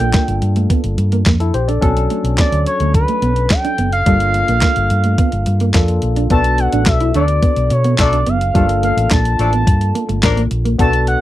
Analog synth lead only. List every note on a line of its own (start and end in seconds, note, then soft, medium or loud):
0.00 0.94 G5 loud
2.39 2.65 D5 loud
2.67 2.93 C#5 medium
2.95 3.52 B4 loud
3.51 3.92 G5 loud
3.93 5.99 F5 loud
6.31 6.61 A5 loud
6.59 6.89 F#5 loud
6.87 7.15 E5 loud
7.16 7.74 D5 loud
7.72 8.00 C#5 medium
8.01 8.30 D5 medium
8.29 8.84 F5 loud
8.84 9.10 F5 medium
9.12 10.20 A5 loud
10.80 11.06 A5 loud
11.08 11.21 F#5 loud